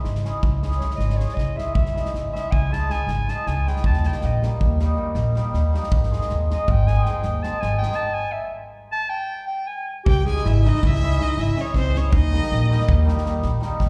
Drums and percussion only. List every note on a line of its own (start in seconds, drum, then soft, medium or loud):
0.04 snare soft
0.15 snare soft
0.25 snare soft
0.43 kick medium
0.63 snare soft
0.71 snare soft
0.81 snare soft
0.90 snare soft
0.99 snare soft
1.09 snare soft
1.20 snare soft
1.29 snare soft
1.37 kick soft
1.37 snare soft
1.58 snare soft
1.75 kick medium
1.86 snare soft
1.96 snare soft
2.05 snare soft
2.15 snare soft
2.36 snare soft
2.52 kick medium
2.73 snare soft
2.90 snare soft
3.08 snare soft
3.28 snare soft
3.47 snare soft
3.67 snare soft
3.76 snare soft
3.84 kick medium
3.93 snare soft
4.03 snare soft
4.12 snare soft
4.21 snare soft
4.43 snare soft
4.61 kick medium
4.79 snare soft
5.15 snare soft
5.36 snare soft
5.54 snare soft
5.74 snare soft
5.83 snare soft
5.92 kick loud
6.03 snare soft
6.13 snare soft
6.21 snare soft
6.29 snare soft
6.50 snare soft
6.68 kick medium
6.87 snare soft
7.06 snare soft
7.23 snare soft
7.43 snare soft
7.62 snare soft
7.83 snare soft
7.92 snare soft
10.06 kick loud
10.27 snare soft
10.36 snare soft
10.45 snare soft
10.65 snare soft
10.75 snare soft
10.83 kick medium
10.94 snare soft
11.03 snare soft
11.11 snare soft
11.21 snare soft
11.38 snare soft
11.57 snare soft
11.74 kick medium
11.74 snare soft
11.95 snare soft
12.13 kick loud
12.34 snare soft
12.43 snare soft
12.51 snare soft
12.72 snare soft
12.81 snare soft
12.89 kick loud
13.08 snare soft
13.18 snare soft
13.26 snare soft
13.42 snare soft
13.62 snare soft
13.80 kick medium
13.80 snare soft